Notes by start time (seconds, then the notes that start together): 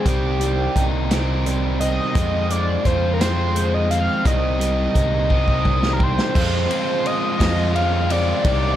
Already playing: C4
0.05 C2 C3 D#3 G3 C4 G4, kick, closed hi-hat
0.40 G3, closed hi-hat
0.76 C2 D#4, kick, closed hi-hat
1.10 C3 D#3 G3 C4 G4, snare, closed hi-hat
1.46 G3, closed hi-hat
1.80 C4 D#5, closed hi-hat
2.15 F2 F3 G#3 C4 F4, kick, closed hi-hat
2.50 G#3 D5, closed hi-hat
2.85 F2 F4 C5, kick, closed hi-hat
3.14 A#4
3.21 F3 G#3 C4 F4 C5, snare, closed hi-hat
3.55 G#3, closed hi-hat
3.74 D#5
3.91 C4 F5, closed hi-hat
4.25 C2 C3 D#3 G3 C4 G4 D#5, kick, closed hi-hat
4.60 G3, closed hi-hat
4.94 C2 D#4, kick, closed hi-hat
5.30 C3 D#3 G3 C4 G4, kick
5.48 kick
5.64 G3, kick
5.83 snare
5.93 A#4
5.99 C4, kick
6.03 C5
6.19 snare
6.35 F2 F3 G#3 C4 F4 C5, kick, crash
6.70 F3 G#3 C4 F4, ride
7.06 D#5, ride
7.39 F2 F3 G#3 C4 F4, kick, snare, ride
7.75 F3 G#3 C4 F4 F5, ride
8.09 F3 G#3 C4 F4 D5, ride
8.44 C2 C3 D#3 G3 C4 D#4 G4, kick, ride